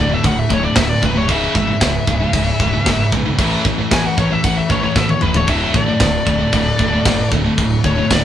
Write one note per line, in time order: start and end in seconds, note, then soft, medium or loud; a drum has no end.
0.00 0.14 D1 medium
0.00 0.11 D2 medium
0.00 1.24 D3 medium
0.00 1.24 F#3 medium
0.00 1.24 A3 medium
0.00 5.44 E4 medium
0.00 1.24 A4 loud
0.00 0.14 D5 medium
0.09 0.22 D2 medium
0.09 0.22 A2 loud
0.14 0.25 E5 medium
0.23 0.41 D1 loud
0.23 0.47 D2 medium
0.23 0.47 A2 loud
0.23 0.39 F#5 loud
0.23 kick loud
0.23 crash medium
0.39 0.54 E5 loud
0.49 0.67 D1 loud
0.49 0.61 D2 medium
0.49 0.60 A2 medium
0.49 kick medium
0.54 0.64 C#5 loud
0.62 0.73 D2 medium
0.62 0.74 A2 medium
0.62 0.77 D5 loud
0.75 0.93 D1 loud
0.75 0.99 D2 medium
0.75 0.99 A2 medium
0.75 0.89 E5 loud
0.75 kick loud
0.75 snare loud
0.75 crash medium
0.89 1.02 D5 medium
1.02 1.29 D1 loud
1.02 1.14 D2 medium
1.02 1.13 A2 loud
1.02 1.16 B4 medium
1.02 kick medium
1.14 1.27 D2 medium
1.14 1.28 A2 medium
1.14 1.30 C#5 loud
1.28 1.45 C#1 loud
1.28 1.53 C#2 medium
1.28 1.52 G#2 loud
1.28 1.53 C#3 loud
1.28 5.44 C#3 medium
1.28 3.36 E3 medium
1.28 3.37 G#3 medium
1.28 3.37 G#4 medium
1.28 1.55 E5 loud
1.28 kick medium
1.28 crash medium
1.54 1.71 G#1 loud
1.54 1.66 C#2 medium
1.54 1.66 G#2 medium
1.54 3.09 E5 loud
1.54 kick medium
1.67 1.79 C#2 medium
1.67 1.79 G#2 medium
1.80 1.98 C#1 loud
1.80 2.04 C#2 medium
1.80 2.04 G#2 medium
1.80 kick loud
1.80 snare loud
1.80 crash medium
2.07 2.24 C#1 loud
2.07 2.18 C#2 medium
2.07 2.18 G#2 medium
2.07 kick loud
2.19 2.31 C#2 medium
2.19 2.32 G#2 medium
2.33 2.50 C#1 medium
2.33 2.57 C#2 medium
2.33 2.57 G#2 medium
2.33 kick loud
2.33 crash medium
2.60 2.77 C#1 medium
2.60 2.73 C#2 medium
2.60 2.72 G#2 medium
2.60 kick medium
2.73 2.85 C#2 medium
2.73 2.86 G#2 medium
2.86 3.02 F#1 medium
2.86 3.10 C#2 medium
2.86 3.10 G#2 medium
2.86 kick loud
2.86 snare loud
2.86 crash medium
3.12 3.29 B1 loud
3.12 3.25 C#2 medium
3.12 3.25 G#2 medium
3.12 kick medium
3.26 3.38 C#2 medium
3.26 3.39 G#2 medium
3.38 3.55 A1 loud
3.38 3.63 A2 medium
3.38 5.46 E3 medium
3.38 3.64 E3 medium
3.38 8.24 A3 medium
3.38 3.64 A3 loud
3.38 8.24 A4 loud
3.38 kick loud
3.38 crash medium
3.65 3.81 A1 medium
3.65 3.78 A2 medium
3.65 3.77 E3 medium
3.65 kick loud
3.78 3.90 A2 medium
3.78 3.90 E3 medium
3.91 4.08 A1 medium
3.91 4.15 A2 medium
3.91 4.15 E3 medium
3.91 4.06 G#5 medium
3.91 kick loud
3.91 snare loud
3.91 crash medium
4.06 4.18 F#5 medium
4.17 4.34 A1 loud
4.17 4.30 A2 medium
4.17 4.30 E3 medium
4.17 4.32 C#5 medium
4.17 kick loud
4.31 4.42 A2 medium
4.31 4.43 E3 medium
4.31 4.44 E5 loud
4.43 4.60 A1 medium
4.43 4.67 A2 medium
4.43 4.67 E3 loud
4.43 4.57 F#5 loud
4.43 kick loud
4.43 crash medium
4.57 4.70 E5 loud
4.69 4.86 A1 loud
4.69 4.81 A2 medium
4.69 4.81 E3 medium
4.69 4.82 C#5 medium
4.69 kick medium
4.82 4.94 A2 medium
4.82 4.94 E3 medium
4.82 4.96 C#5 loud
4.95 5.12 A1 loud
4.95 5.19 A2 medium
4.95 5.19 E3 medium
4.95 5.10 E5 loud
4.95 kick loud
4.95 snare medium
5.09 5.22 C#5 medium
5.09 high tom medium
5.21 5.48 C#1 medium
5.21 5.33 A2 medium
5.21 5.33 E3 medium
5.21 5.36 B4 medium
5.21 mid tom medium
5.34 5.46 A2 medium
5.34 5.47 E3 medium
5.34 5.48 C#5 loud
5.34 floor tom loud
5.47 5.64 D1 loud
5.47 5.72 D2 loud
5.47 5.72 A2 medium
5.47 8.24 D3 medium
5.47 5.73 D3 medium
5.47 8.24 F#3 medium
5.47 7.56 F#4 medium
5.47 5.74 E5 medium
5.47 kick loud
5.47 crash medium
5.73 5.91 A1 medium
5.73 5.87 D2 medium
5.73 5.86 A2 medium
5.73 7.29 D5 loud
5.73 kick loud
5.87 5.99 D2 medium
5.87 6.00 A2 loud
6.00 6.17 D1 medium
6.00 6.24 D2 medium
6.00 6.24 A2 medium
6.00 kick loud
6.00 snare loud
6.00 crash medium
6.27 6.43 D1 loud
6.27 6.39 D2 medium
6.27 6.38 A2 medium
6.27 kick medium
6.39 6.51 D2 medium
6.39 6.52 A2 medium
6.52 6.69 D1 loud
6.52 6.77 D2 medium
6.52 6.77 A2 medium
6.52 kick loud
6.52 crash medium
6.79 6.96 D1 loud
6.79 6.93 D2 medium
6.79 6.92 A2 medium
6.79 kick medium
6.93 7.06 D2 medium
6.93 7.06 A2 medium
7.05 7.22 F#1 loud
7.05 7.30 D2 medium
7.05 7.30 A2 medium
7.05 kick loud
7.05 snare loud
7.05 crash medium
7.31 7.48 D1 loud
7.31 7.45 D2 medium
7.31 7.45 A2 medium
7.31 kick medium
7.46 7.57 D2 medium
7.46 7.58 A2 medium
7.58 7.75 D1 loud
7.58 7.82 D2 medium
7.58 7.82 A2 medium
7.58 8.24 E4 medium
7.58 kick loud
7.58 crash medium
7.84 8.00 D1 loud
7.84 7.97 D2 medium
7.84 7.97 A2 loud
7.84 8.11 C#5 loud
7.84 kick medium
7.98 8.11 D2 medium
7.98 8.11 A2 medium
8.11 8.24 D1 loud
8.11 8.24 D2 medium
8.11 8.24 A2 medium
8.11 8.24 D5 loud
8.11 kick loud
8.11 snare loud
8.11 crash medium